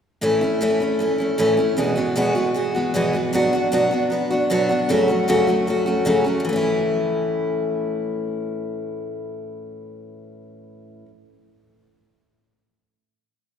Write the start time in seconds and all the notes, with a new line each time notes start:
0.21 A2 E3 A3 C#4 E4
0.41 A3 C#4 E4
0.61 A2 E3 A3 C#4 E4
0.80 A3 C#4 E4
0.99 E3 A3 C#4 E4
1.18 A3 C#4 E4
1.38 A2 E3 A3 C#4 E4
1.57 A3 C#4 E4
1.77 E2 B2 E3 G#3 B3 F#4
1.96 E3 G#3 B3 F#4
2.16 E2 B2 E3 G#3 B3 F#4
2.35 E3 G#3 B3 F#4
2.54 E3 G#3 B3 F#4
2.75 E3 G#3 B3 F#4
2.94 E2 B2 E3 G#3 B3 F#4
3.13 E3 G#3 B3 F#4
3.33 B2 F#3 B3 D4 F#4
3.53 B3 D4 F#4
3.72 B2 F#3 B3 D4 F#4
3.91 B3 D4 F#4
4.10 F#3 B3 D4 F#4
4.31 B3 D4 F#4
4.50 B2 F#3 B3 D4 F#4
4.69 B3 D4 F#4
4.89 F#2 C#3 F#3 A3 C#4 F#4
5.08 F#3 A3 C#4 F#4
5.28 F#2 C#3 F#3 A3 C#4 F#4
5.47 F#3 A3 C#4 F#4
5.67 F#3 A3 C#4 F#4
5.86 F#3 A3 C#4 F#4
6.05 F#2 C#3 F#3 A3 C#4 F#4
6.24 F#3 A3 C#4 F#4
6.40 A2
6.45 E3
6.49 A3 C#4
6.56 E4